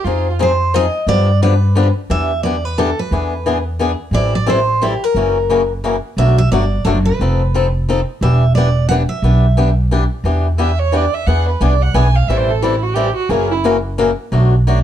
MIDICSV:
0, 0, Header, 1, 5, 480
1, 0, Start_track
1, 0, Key_signature, 1, "minor"
1, 0, Tempo, 339751
1, 82, Time_signature, 3, 2, 24, 8
1, 20956, End_track
2, 0, Start_track
2, 0, Title_t, "Steel-string acoustic guitar"
2, 0, Program_c, 0, 25
2, 601, Note_on_c, 0, 72, 88
2, 1028, Note_off_c, 0, 72, 0
2, 1068, Note_on_c, 0, 75, 104
2, 1529, Note_off_c, 0, 75, 0
2, 1534, Note_on_c, 0, 74, 99
2, 2010, Note_off_c, 0, 74, 0
2, 2016, Note_on_c, 0, 71, 73
2, 2725, Note_off_c, 0, 71, 0
2, 2980, Note_on_c, 0, 76, 92
2, 3417, Note_off_c, 0, 76, 0
2, 3437, Note_on_c, 0, 74, 87
2, 3743, Note_off_c, 0, 74, 0
2, 3743, Note_on_c, 0, 71, 77
2, 3926, Note_off_c, 0, 71, 0
2, 3930, Note_on_c, 0, 69, 74
2, 4225, Note_off_c, 0, 69, 0
2, 4229, Note_on_c, 0, 71, 74
2, 5125, Note_off_c, 0, 71, 0
2, 5855, Note_on_c, 0, 74, 93
2, 6120, Note_off_c, 0, 74, 0
2, 6148, Note_on_c, 0, 74, 90
2, 6318, Note_off_c, 0, 74, 0
2, 6352, Note_on_c, 0, 72, 88
2, 6818, Note_on_c, 0, 67, 77
2, 6833, Note_off_c, 0, 72, 0
2, 7117, Note_off_c, 0, 67, 0
2, 7117, Note_on_c, 0, 70, 79
2, 8068, Note_off_c, 0, 70, 0
2, 8734, Note_on_c, 0, 76, 90
2, 9002, Note_off_c, 0, 76, 0
2, 9019, Note_on_c, 0, 76, 89
2, 9201, Note_off_c, 0, 76, 0
2, 9206, Note_on_c, 0, 74, 87
2, 9654, Note_off_c, 0, 74, 0
2, 9673, Note_on_c, 0, 69, 82
2, 9753, Note_off_c, 0, 69, 0
2, 9966, Note_on_c, 0, 71, 76
2, 10878, Note_off_c, 0, 71, 0
2, 11620, Note_on_c, 0, 76, 82
2, 12072, Note_off_c, 0, 76, 0
2, 12078, Note_on_c, 0, 74, 81
2, 12549, Note_off_c, 0, 74, 0
2, 12554, Note_on_c, 0, 78, 98
2, 12635, Note_off_c, 0, 78, 0
2, 12841, Note_on_c, 0, 76, 82
2, 13756, Note_off_c, 0, 76, 0
2, 20956, End_track
3, 0, Start_track
3, 0, Title_t, "Violin"
3, 0, Program_c, 1, 40
3, 61, Note_on_c, 1, 65, 95
3, 456, Note_off_c, 1, 65, 0
3, 14962, Note_on_c, 1, 76, 74
3, 15245, Note_on_c, 1, 73, 85
3, 15266, Note_off_c, 1, 76, 0
3, 15488, Note_on_c, 1, 74, 80
3, 15509, Note_off_c, 1, 73, 0
3, 15743, Note_on_c, 1, 76, 87
3, 15764, Note_off_c, 1, 74, 0
3, 15918, Note_on_c, 1, 78, 84
3, 15939, Note_off_c, 1, 76, 0
3, 16216, Note_off_c, 1, 78, 0
3, 16233, Note_on_c, 1, 71, 53
3, 16420, Note_on_c, 1, 74, 82
3, 16441, Note_off_c, 1, 71, 0
3, 16703, Note_on_c, 1, 78, 92
3, 16724, Note_off_c, 1, 74, 0
3, 16883, Note_on_c, 1, 80, 93
3, 16904, Note_off_c, 1, 78, 0
3, 17175, Note_on_c, 1, 77, 85
3, 17196, Note_off_c, 1, 80, 0
3, 17358, Note_on_c, 1, 76, 77
3, 17379, Note_off_c, 1, 77, 0
3, 17484, Note_on_c, 1, 72, 76
3, 17505, Note_off_c, 1, 76, 0
3, 17668, Note_on_c, 1, 69, 75
3, 17689, Note_off_c, 1, 72, 0
3, 17841, Note_on_c, 1, 64, 70
3, 17862, Note_off_c, 1, 69, 0
3, 18125, Note_on_c, 1, 66, 78
3, 18147, Note_off_c, 1, 64, 0
3, 18286, Note_on_c, 1, 67, 80
3, 18308, Note_off_c, 1, 66, 0
3, 18586, Note_off_c, 1, 67, 0
3, 18595, Note_on_c, 1, 66, 77
3, 18782, Note_on_c, 1, 68, 81
3, 18803, Note_off_c, 1, 66, 0
3, 19079, Note_off_c, 1, 68, 0
3, 19088, Note_on_c, 1, 64, 85
3, 19204, Note_off_c, 1, 64, 0
3, 20956, End_track
4, 0, Start_track
4, 0, Title_t, "Steel-string acoustic guitar"
4, 0, Program_c, 2, 25
4, 78, Note_on_c, 2, 53, 58
4, 94, Note_on_c, 2, 60, 64
4, 94, Note_on_c, 2, 63, 71
4, 101, Note_on_c, 2, 68, 70
4, 371, Note_off_c, 2, 53, 0
4, 379, Note_off_c, 2, 60, 0
4, 379, Note_off_c, 2, 63, 0
4, 383, Note_off_c, 2, 68, 0
4, 555, Note_on_c, 2, 53, 82
4, 565, Note_on_c, 2, 60, 81
4, 568, Note_on_c, 2, 63, 98
4, 574, Note_on_c, 2, 68, 85
4, 712, Note_off_c, 2, 53, 0
4, 718, Note_off_c, 2, 60, 0
4, 719, Note_off_c, 2, 63, 0
4, 722, Note_off_c, 2, 68, 0
4, 1046, Note_on_c, 2, 53, 91
4, 1049, Note_on_c, 2, 60, 92
4, 1052, Note_on_c, 2, 63, 96
4, 1064, Note_on_c, 2, 68, 100
4, 1198, Note_off_c, 2, 53, 0
4, 1199, Note_off_c, 2, 60, 0
4, 1201, Note_off_c, 2, 63, 0
4, 1207, Note_off_c, 2, 68, 0
4, 1519, Note_on_c, 2, 50, 61
4, 1529, Note_on_c, 2, 53, 72
4, 1531, Note_on_c, 2, 62, 72
4, 1532, Note_on_c, 2, 59, 70
4, 1540, Note_on_c, 2, 67, 69
4, 1811, Note_off_c, 2, 50, 0
4, 1816, Note_off_c, 2, 53, 0
4, 1817, Note_off_c, 2, 59, 0
4, 1817, Note_off_c, 2, 62, 0
4, 1821, Note_off_c, 2, 67, 0
4, 2011, Note_on_c, 2, 50, 74
4, 2016, Note_on_c, 2, 53, 79
4, 2020, Note_on_c, 2, 62, 86
4, 2024, Note_on_c, 2, 59, 79
4, 2029, Note_on_c, 2, 67, 93
4, 2160, Note_off_c, 2, 50, 0
4, 2162, Note_off_c, 2, 53, 0
4, 2164, Note_off_c, 2, 62, 0
4, 2166, Note_off_c, 2, 59, 0
4, 2169, Note_off_c, 2, 67, 0
4, 2478, Note_on_c, 2, 50, 80
4, 2489, Note_on_c, 2, 53, 83
4, 2495, Note_on_c, 2, 67, 94
4, 2496, Note_on_c, 2, 59, 88
4, 2497, Note_on_c, 2, 62, 86
4, 2633, Note_off_c, 2, 50, 0
4, 2639, Note_off_c, 2, 53, 0
4, 2642, Note_off_c, 2, 59, 0
4, 2642, Note_off_c, 2, 67, 0
4, 2643, Note_off_c, 2, 62, 0
4, 2965, Note_on_c, 2, 52, 63
4, 2969, Note_on_c, 2, 59, 62
4, 2974, Note_on_c, 2, 62, 61
4, 2977, Note_on_c, 2, 67, 68
4, 3254, Note_off_c, 2, 52, 0
4, 3256, Note_off_c, 2, 59, 0
4, 3258, Note_off_c, 2, 62, 0
4, 3260, Note_off_c, 2, 67, 0
4, 3445, Note_on_c, 2, 52, 75
4, 3461, Note_on_c, 2, 59, 70
4, 3465, Note_on_c, 2, 62, 76
4, 3470, Note_on_c, 2, 67, 81
4, 3597, Note_off_c, 2, 52, 0
4, 3605, Note_off_c, 2, 59, 0
4, 3607, Note_off_c, 2, 62, 0
4, 3609, Note_off_c, 2, 67, 0
4, 3926, Note_on_c, 2, 52, 79
4, 3932, Note_on_c, 2, 59, 79
4, 3941, Note_on_c, 2, 62, 87
4, 3943, Note_on_c, 2, 67, 85
4, 4078, Note_off_c, 2, 52, 0
4, 4080, Note_off_c, 2, 59, 0
4, 4085, Note_off_c, 2, 62, 0
4, 4086, Note_off_c, 2, 67, 0
4, 4409, Note_on_c, 2, 52, 61
4, 4414, Note_on_c, 2, 59, 60
4, 4421, Note_on_c, 2, 62, 61
4, 4427, Note_on_c, 2, 68, 68
4, 4697, Note_off_c, 2, 52, 0
4, 4699, Note_off_c, 2, 59, 0
4, 4703, Note_off_c, 2, 62, 0
4, 4705, Note_off_c, 2, 68, 0
4, 4887, Note_on_c, 2, 52, 75
4, 4895, Note_on_c, 2, 59, 83
4, 4899, Note_on_c, 2, 62, 78
4, 4900, Note_on_c, 2, 68, 86
4, 5039, Note_off_c, 2, 52, 0
4, 5043, Note_off_c, 2, 59, 0
4, 5045, Note_off_c, 2, 62, 0
4, 5045, Note_off_c, 2, 68, 0
4, 5360, Note_on_c, 2, 52, 75
4, 5370, Note_on_c, 2, 59, 82
4, 5378, Note_on_c, 2, 62, 89
4, 5387, Note_on_c, 2, 68, 92
4, 5516, Note_off_c, 2, 52, 0
4, 5521, Note_off_c, 2, 59, 0
4, 5525, Note_off_c, 2, 62, 0
4, 5529, Note_off_c, 2, 68, 0
4, 5834, Note_on_c, 2, 52, 64
4, 5840, Note_on_c, 2, 55, 60
4, 5844, Note_on_c, 2, 60, 62
4, 5855, Note_on_c, 2, 69, 66
4, 5859, Note_on_c, 2, 64, 63
4, 6130, Note_off_c, 2, 52, 0
4, 6134, Note_off_c, 2, 55, 0
4, 6135, Note_off_c, 2, 60, 0
4, 6141, Note_off_c, 2, 69, 0
4, 6143, Note_off_c, 2, 64, 0
4, 6307, Note_on_c, 2, 52, 85
4, 6315, Note_on_c, 2, 55, 86
4, 6315, Note_on_c, 2, 60, 83
4, 6323, Note_on_c, 2, 64, 82
4, 6333, Note_on_c, 2, 69, 93
4, 6470, Note_off_c, 2, 52, 0
4, 6474, Note_off_c, 2, 55, 0
4, 6474, Note_off_c, 2, 60, 0
4, 6478, Note_off_c, 2, 64, 0
4, 6483, Note_off_c, 2, 69, 0
4, 6803, Note_on_c, 2, 52, 83
4, 6809, Note_on_c, 2, 55, 78
4, 6817, Note_on_c, 2, 60, 83
4, 6818, Note_on_c, 2, 64, 88
4, 6820, Note_on_c, 2, 69, 78
4, 6958, Note_off_c, 2, 52, 0
4, 6961, Note_off_c, 2, 55, 0
4, 6966, Note_off_c, 2, 60, 0
4, 6966, Note_off_c, 2, 64, 0
4, 6967, Note_off_c, 2, 69, 0
4, 7287, Note_on_c, 2, 49, 64
4, 7294, Note_on_c, 2, 58, 61
4, 7297, Note_on_c, 2, 52, 58
4, 7297, Note_on_c, 2, 61, 69
4, 7308, Note_on_c, 2, 66, 65
4, 7578, Note_off_c, 2, 49, 0
4, 7581, Note_off_c, 2, 58, 0
4, 7583, Note_off_c, 2, 52, 0
4, 7583, Note_off_c, 2, 61, 0
4, 7589, Note_off_c, 2, 66, 0
4, 7765, Note_on_c, 2, 49, 73
4, 7774, Note_on_c, 2, 52, 75
4, 7777, Note_on_c, 2, 58, 78
4, 7784, Note_on_c, 2, 66, 89
4, 7786, Note_on_c, 2, 61, 87
4, 7920, Note_off_c, 2, 49, 0
4, 7925, Note_off_c, 2, 52, 0
4, 7926, Note_off_c, 2, 58, 0
4, 7930, Note_off_c, 2, 66, 0
4, 7931, Note_off_c, 2, 61, 0
4, 8247, Note_on_c, 2, 49, 79
4, 8250, Note_on_c, 2, 52, 78
4, 8258, Note_on_c, 2, 58, 84
4, 8266, Note_on_c, 2, 61, 82
4, 8267, Note_on_c, 2, 66, 85
4, 8402, Note_off_c, 2, 49, 0
4, 8403, Note_off_c, 2, 52, 0
4, 8407, Note_off_c, 2, 58, 0
4, 8411, Note_off_c, 2, 61, 0
4, 8412, Note_off_c, 2, 66, 0
4, 8727, Note_on_c, 2, 47, 57
4, 8741, Note_on_c, 2, 54, 65
4, 8748, Note_on_c, 2, 57, 63
4, 8751, Note_on_c, 2, 62, 66
4, 8756, Note_on_c, 2, 66, 68
4, 9019, Note_off_c, 2, 47, 0
4, 9027, Note_off_c, 2, 54, 0
4, 9030, Note_off_c, 2, 57, 0
4, 9031, Note_off_c, 2, 62, 0
4, 9034, Note_off_c, 2, 66, 0
4, 9219, Note_on_c, 2, 47, 76
4, 9219, Note_on_c, 2, 54, 80
4, 9225, Note_on_c, 2, 57, 80
4, 9230, Note_on_c, 2, 62, 78
4, 9236, Note_on_c, 2, 66, 84
4, 9368, Note_off_c, 2, 47, 0
4, 9368, Note_off_c, 2, 54, 0
4, 9371, Note_off_c, 2, 57, 0
4, 9374, Note_off_c, 2, 62, 0
4, 9377, Note_off_c, 2, 66, 0
4, 9686, Note_on_c, 2, 54, 75
4, 9688, Note_on_c, 2, 47, 82
4, 9699, Note_on_c, 2, 57, 79
4, 9701, Note_on_c, 2, 66, 80
4, 9703, Note_on_c, 2, 62, 90
4, 9842, Note_off_c, 2, 54, 0
4, 9843, Note_off_c, 2, 47, 0
4, 9849, Note_off_c, 2, 57, 0
4, 9850, Note_off_c, 2, 66, 0
4, 9851, Note_off_c, 2, 62, 0
4, 10183, Note_on_c, 2, 53, 60
4, 10187, Note_on_c, 2, 60, 65
4, 10192, Note_on_c, 2, 63, 65
4, 10202, Note_on_c, 2, 69, 77
4, 10468, Note_off_c, 2, 53, 0
4, 10470, Note_off_c, 2, 60, 0
4, 10473, Note_off_c, 2, 63, 0
4, 10478, Note_off_c, 2, 69, 0
4, 10659, Note_on_c, 2, 53, 82
4, 10670, Note_on_c, 2, 60, 84
4, 10679, Note_on_c, 2, 63, 76
4, 10679, Note_on_c, 2, 69, 83
4, 10810, Note_off_c, 2, 53, 0
4, 10815, Note_off_c, 2, 60, 0
4, 10820, Note_off_c, 2, 63, 0
4, 10820, Note_off_c, 2, 69, 0
4, 11141, Note_on_c, 2, 53, 77
4, 11154, Note_on_c, 2, 60, 83
4, 11155, Note_on_c, 2, 63, 88
4, 11159, Note_on_c, 2, 69, 89
4, 11291, Note_off_c, 2, 53, 0
4, 11297, Note_off_c, 2, 60, 0
4, 11298, Note_off_c, 2, 63, 0
4, 11300, Note_off_c, 2, 69, 0
4, 11620, Note_on_c, 2, 52, 63
4, 11628, Note_on_c, 2, 59, 63
4, 11634, Note_on_c, 2, 62, 70
4, 11641, Note_on_c, 2, 67, 61
4, 11907, Note_off_c, 2, 52, 0
4, 11912, Note_off_c, 2, 59, 0
4, 11914, Note_off_c, 2, 62, 0
4, 11918, Note_off_c, 2, 67, 0
4, 12109, Note_on_c, 2, 52, 76
4, 12111, Note_on_c, 2, 59, 83
4, 12118, Note_on_c, 2, 62, 87
4, 12125, Note_on_c, 2, 67, 82
4, 12255, Note_off_c, 2, 52, 0
4, 12256, Note_off_c, 2, 59, 0
4, 12260, Note_off_c, 2, 62, 0
4, 12263, Note_off_c, 2, 67, 0
4, 12579, Note_on_c, 2, 52, 81
4, 12585, Note_on_c, 2, 59, 85
4, 12594, Note_on_c, 2, 62, 89
4, 12600, Note_on_c, 2, 67, 84
4, 12730, Note_off_c, 2, 52, 0
4, 12733, Note_off_c, 2, 59, 0
4, 12738, Note_off_c, 2, 62, 0
4, 12741, Note_off_c, 2, 67, 0
4, 13049, Note_on_c, 2, 52, 60
4, 13056, Note_on_c, 2, 59, 72
4, 13059, Note_on_c, 2, 62, 65
4, 13068, Note_on_c, 2, 67, 66
4, 13342, Note_off_c, 2, 52, 0
4, 13346, Note_off_c, 2, 59, 0
4, 13347, Note_off_c, 2, 62, 0
4, 13352, Note_off_c, 2, 67, 0
4, 13521, Note_on_c, 2, 52, 76
4, 13529, Note_on_c, 2, 59, 79
4, 13533, Note_on_c, 2, 62, 83
4, 13543, Note_on_c, 2, 67, 78
4, 13681, Note_off_c, 2, 52, 0
4, 13685, Note_off_c, 2, 59, 0
4, 13687, Note_off_c, 2, 62, 0
4, 13692, Note_off_c, 2, 67, 0
4, 14006, Note_on_c, 2, 52, 71
4, 14015, Note_on_c, 2, 59, 80
4, 14020, Note_on_c, 2, 67, 85
4, 14021, Note_on_c, 2, 62, 85
4, 14164, Note_off_c, 2, 52, 0
4, 14169, Note_off_c, 2, 59, 0
4, 14171, Note_off_c, 2, 67, 0
4, 14172, Note_off_c, 2, 62, 0
4, 14480, Note_on_c, 2, 52, 63
4, 14489, Note_on_c, 2, 59, 61
4, 14493, Note_on_c, 2, 62, 66
4, 14496, Note_on_c, 2, 67, 61
4, 14778, Note_off_c, 2, 52, 0
4, 14782, Note_off_c, 2, 59, 0
4, 14784, Note_off_c, 2, 62, 0
4, 14786, Note_off_c, 2, 67, 0
4, 14950, Note_on_c, 2, 52, 77
4, 14957, Note_on_c, 2, 59, 85
4, 14965, Note_on_c, 2, 62, 83
4, 14974, Note_on_c, 2, 67, 88
4, 15116, Note_off_c, 2, 52, 0
4, 15119, Note_off_c, 2, 59, 0
4, 15123, Note_off_c, 2, 62, 0
4, 15128, Note_off_c, 2, 67, 0
4, 15430, Note_on_c, 2, 52, 77
4, 15438, Note_on_c, 2, 59, 76
4, 15447, Note_on_c, 2, 62, 84
4, 15449, Note_on_c, 2, 67, 83
4, 15596, Note_off_c, 2, 52, 0
4, 15600, Note_off_c, 2, 59, 0
4, 15604, Note_off_c, 2, 62, 0
4, 15605, Note_off_c, 2, 67, 0
4, 15928, Note_on_c, 2, 52, 61
4, 15937, Note_on_c, 2, 59, 62
4, 15937, Note_on_c, 2, 62, 60
4, 15943, Note_on_c, 2, 68, 65
4, 16222, Note_off_c, 2, 52, 0
4, 16226, Note_off_c, 2, 59, 0
4, 16226, Note_off_c, 2, 62, 0
4, 16229, Note_off_c, 2, 68, 0
4, 16398, Note_on_c, 2, 52, 73
4, 16405, Note_on_c, 2, 59, 79
4, 16412, Note_on_c, 2, 62, 91
4, 16414, Note_on_c, 2, 68, 81
4, 16560, Note_off_c, 2, 52, 0
4, 16563, Note_off_c, 2, 59, 0
4, 16566, Note_off_c, 2, 62, 0
4, 16567, Note_off_c, 2, 68, 0
4, 16874, Note_on_c, 2, 52, 83
4, 16886, Note_on_c, 2, 59, 92
4, 16891, Note_on_c, 2, 62, 81
4, 16902, Note_on_c, 2, 68, 89
4, 17037, Note_off_c, 2, 52, 0
4, 17043, Note_off_c, 2, 59, 0
4, 17046, Note_off_c, 2, 62, 0
4, 17051, Note_off_c, 2, 68, 0
4, 17371, Note_on_c, 2, 52, 66
4, 17374, Note_on_c, 2, 55, 65
4, 17378, Note_on_c, 2, 64, 64
4, 17383, Note_on_c, 2, 60, 75
4, 17387, Note_on_c, 2, 69, 69
4, 17662, Note_off_c, 2, 52, 0
4, 17664, Note_off_c, 2, 55, 0
4, 17665, Note_off_c, 2, 64, 0
4, 17668, Note_off_c, 2, 60, 0
4, 17670, Note_off_c, 2, 69, 0
4, 17836, Note_on_c, 2, 52, 88
4, 17842, Note_on_c, 2, 55, 76
4, 17844, Note_on_c, 2, 60, 83
4, 17858, Note_on_c, 2, 64, 89
4, 17859, Note_on_c, 2, 69, 91
4, 17997, Note_off_c, 2, 52, 0
4, 18000, Note_off_c, 2, 55, 0
4, 18002, Note_off_c, 2, 60, 0
4, 18009, Note_off_c, 2, 64, 0
4, 18009, Note_off_c, 2, 69, 0
4, 18303, Note_on_c, 2, 52, 83
4, 18305, Note_on_c, 2, 55, 84
4, 18314, Note_on_c, 2, 64, 87
4, 18317, Note_on_c, 2, 60, 82
4, 18323, Note_on_c, 2, 69, 88
4, 18471, Note_off_c, 2, 52, 0
4, 18472, Note_off_c, 2, 55, 0
4, 18476, Note_off_c, 2, 64, 0
4, 18478, Note_off_c, 2, 60, 0
4, 18481, Note_off_c, 2, 69, 0
4, 18784, Note_on_c, 2, 49, 65
4, 18791, Note_on_c, 2, 52, 68
4, 18796, Note_on_c, 2, 58, 67
4, 18800, Note_on_c, 2, 61, 68
4, 18808, Note_on_c, 2, 66, 72
4, 19087, Note_off_c, 2, 49, 0
4, 19091, Note_off_c, 2, 52, 0
4, 19093, Note_off_c, 2, 58, 0
4, 19095, Note_off_c, 2, 61, 0
4, 19099, Note_off_c, 2, 66, 0
4, 19272, Note_on_c, 2, 49, 78
4, 19276, Note_on_c, 2, 52, 82
4, 19281, Note_on_c, 2, 58, 84
4, 19288, Note_on_c, 2, 61, 88
4, 19293, Note_on_c, 2, 66, 89
4, 19434, Note_off_c, 2, 49, 0
4, 19436, Note_off_c, 2, 52, 0
4, 19439, Note_off_c, 2, 58, 0
4, 19442, Note_off_c, 2, 61, 0
4, 19445, Note_off_c, 2, 66, 0
4, 19753, Note_on_c, 2, 49, 83
4, 19759, Note_on_c, 2, 52, 90
4, 19759, Note_on_c, 2, 58, 83
4, 19768, Note_on_c, 2, 61, 94
4, 19769, Note_on_c, 2, 66, 79
4, 19914, Note_off_c, 2, 49, 0
4, 19917, Note_off_c, 2, 52, 0
4, 19917, Note_off_c, 2, 58, 0
4, 19921, Note_off_c, 2, 61, 0
4, 19922, Note_off_c, 2, 66, 0
4, 20229, Note_on_c, 2, 47, 66
4, 20240, Note_on_c, 2, 54, 64
4, 20241, Note_on_c, 2, 57, 71
4, 20249, Note_on_c, 2, 62, 65
4, 20251, Note_on_c, 2, 66, 69
4, 20528, Note_off_c, 2, 47, 0
4, 20533, Note_off_c, 2, 54, 0
4, 20534, Note_off_c, 2, 57, 0
4, 20538, Note_off_c, 2, 62, 0
4, 20539, Note_off_c, 2, 66, 0
4, 20726, Note_on_c, 2, 47, 79
4, 20730, Note_on_c, 2, 54, 75
4, 20735, Note_on_c, 2, 57, 81
4, 20741, Note_on_c, 2, 62, 89
4, 20745, Note_on_c, 2, 66, 88
4, 20879, Note_off_c, 2, 47, 0
4, 20881, Note_off_c, 2, 54, 0
4, 20884, Note_off_c, 2, 57, 0
4, 20887, Note_off_c, 2, 62, 0
4, 20889, Note_off_c, 2, 66, 0
4, 20956, End_track
5, 0, Start_track
5, 0, Title_t, "Upright bass"
5, 0, Program_c, 3, 32
5, 63, Note_on_c, 3, 41, 81
5, 1221, Note_off_c, 3, 41, 0
5, 1506, Note_on_c, 3, 43, 83
5, 2663, Note_off_c, 3, 43, 0
5, 2963, Note_on_c, 3, 40, 78
5, 4114, Note_off_c, 3, 40, 0
5, 4396, Note_on_c, 3, 40, 79
5, 5552, Note_off_c, 3, 40, 0
5, 5807, Note_on_c, 3, 33, 81
5, 6975, Note_off_c, 3, 33, 0
5, 7269, Note_on_c, 3, 30, 77
5, 8429, Note_off_c, 3, 30, 0
5, 8711, Note_on_c, 3, 35, 77
5, 9103, Note_off_c, 3, 35, 0
5, 9205, Note_on_c, 3, 31, 79
5, 9615, Note_off_c, 3, 31, 0
5, 9672, Note_on_c, 3, 30, 78
5, 10088, Note_off_c, 3, 30, 0
5, 10165, Note_on_c, 3, 29, 82
5, 11320, Note_off_c, 3, 29, 0
5, 11600, Note_on_c, 3, 28, 84
5, 12757, Note_off_c, 3, 28, 0
5, 13029, Note_on_c, 3, 35, 78
5, 14190, Note_off_c, 3, 35, 0
5, 14461, Note_on_c, 3, 40, 83
5, 15626, Note_off_c, 3, 40, 0
5, 15919, Note_on_c, 3, 40, 85
5, 16308, Note_off_c, 3, 40, 0
5, 16395, Note_on_c, 3, 36, 76
5, 16810, Note_off_c, 3, 36, 0
5, 16872, Note_on_c, 3, 35, 81
5, 17288, Note_off_c, 3, 35, 0
5, 17338, Note_on_c, 3, 33, 81
5, 18501, Note_off_c, 3, 33, 0
5, 18778, Note_on_c, 3, 30, 83
5, 19940, Note_off_c, 3, 30, 0
5, 20228, Note_on_c, 3, 35, 90
5, 20956, Note_off_c, 3, 35, 0
5, 20956, End_track
0, 0, End_of_file